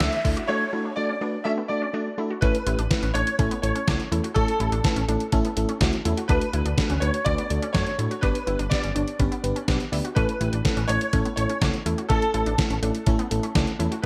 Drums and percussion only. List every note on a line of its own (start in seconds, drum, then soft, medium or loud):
0.00 snare loud
0.00 closed hi-hat medium
0.13 closed hi-hat soft
0.25 kick medium
0.25 open hi-hat medium
0.37 closed hi-hat soft
2.42 kick loud
2.42 closed hi-hat medium
2.55 closed hi-hat medium
2.67 closed hi-hat medium
2.79 closed hi-hat soft
2.91 kick loud
2.91 snare loud
2.91 closed hi-hat medium
3.03 closed hi-hat medium
3.15 closed hi-hat medium
3.27 closed hi-hat medium
3.39 kick loud
3.39 closed hi-hat medium
3.51 closed hi-hat medium
3.63 closed hi-hat medium
3.76 closed hi-hat medium
3.88 kick loud
3.88 snare loud
3.88 closed hi-hat medium
4.00 closed hi-hat soft
4.12 closed hi-hat medium
4.24 closed hi-hat medium
4.36 kick loud
4.36 closed hi-hat medium
4.48 closed hi-hat medium
4.60 closed hi-hat medium
4.72 closed hi-hat medium
4.84 kick loud
4.84 snare loud
4.84 closed hi-hat medium
4.96 closed hi-hat medium
5.09 closed hi-hat medium
5.20 closed hi-hat medium
5.32 kick loud
5.32 closed hi-hat medium
5.45 closed hi-hat medium
5.57 closed hi-hat medium
5.69 closed hi-hat medium
5.81 kick loud
5.81 snare loud
5.81 closed hi-hat medium
5.93 closed hi-hat soft
6.05 closed hi-hat medium
6.17 closed hi-hat medium
6.29 kick loud
6.29 closed hi-hat medium
6.41 closed hi-hat medium
6.53 closed hi-hat medium
6.66 closed hi-hat medium
6.78 kick loud
6.78 snare loud
6.78 closed hi-hat medium
6.90 closed hi-hat medium
7.02 closed hi-hat medium
7.14 closed hi-hat medium
7.26 kick loud
7.26 closed hi-hat medium
7.38 closed hi-hat medium
7.50 closed hi-hat medium
7.63 closed hi-hat medium
7.74 kick loud
7.74 snare loud
7.74 closed hi-hat medium
7.87 closed hi-hat soft
7.99 closed hi-hat medium
8.11 closed hi-hat medium
8.23 kick loud
8.23 closed hi-hat medium
8.35 closed hi-hat medium
8.47 closed hi-hat medium
8.59 closed hi-hat medium
8.71 kick loud
8.71 snare loud
8.71 closed hi-hat medium
8.84 closed hi-hat medium
8.96 closed hi-hat medium
9.08 closed hi-hat soft
9.20 kick loud
9.20 closed hi-hat medium
9.32 closed hi-hat medium
9.44 closed hi-hat medium
9.56 closed hi-hat soft
9.68 kick loud
9.68 snare loud
9.68 closed hi-hat medium
9.80 closed hi-hat soft
9.93 open hi-hat medium
10.05 closed hi-hat medium
10.17 kick loud
10.17 closed hi-hat medium
10.29 closed hi-hat medium
10.41 closed hi-hat medium
10.53 closed hi-hat medium
10.65 kick loud
10.65 snare loud
10.65 closed hi-hat medium
10.77 closed hi-hat medium
10.89 closed hi-hat medium
11.01 closed hi-hat soft
11.13 kick loud
11.13 closed hi-hat medium
11.25 closed hi-hat medium
11.37 closed hi-hat medium
11.50 closed hi-hat medium
11.61 kick loud
11.61 snare loud
11.61 closed hi-hat medium
11.74 closed hi-hat soft
11.86 closed hi-hat medium
11.98 closed hi-hat soft
12.10 kick loud
12.10 closed hi-hat medium
12.22 closed hi-hat medium
12.34 closed hi-hat medium
12.46 closed hi-hat medium
12.58 kick loud
12.58 snare loud
12.58 closed hi-hat medium
12.70 closed hi-hat medium
12.83 closed hi-hat medium
12.95 closed hi-hat medium
13.06 kick loud
13.06 closed hi-hat medium
13.19 closed hi-hat medium
13.31 closed hi-hat medium
13.43 closed hi-hat medium
13.55 kick loud
13.55 snare loud
13.55 closed hi-hat medium
13.67 closed hi-hat soft
13.80 closed hi-hat medium
13.92 closed hi-hat medium